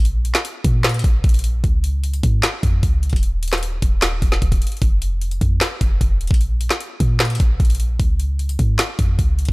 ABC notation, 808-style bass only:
X:1
M:4/4
L:1/16
Q:1/4=151
K:Dblyd
V:1 name="808-style bass" clef=bass
B,,,3 z3 B,,4 B,,,2 B,,,4 | D,,6 A,,2 z2 F,,2 D,,3 E,,,- | E,,,6 E,,,4 E,,,2 E,,,2 z2 | F,,,6 F,,2 z2 F,,,2 F,,,2 E,,, B,,,- |
B,,,3 z3 B,,4 B,,,2 B,,,4 | D,,6 A,,2 z2 F,,2 D,,3 E,,, |]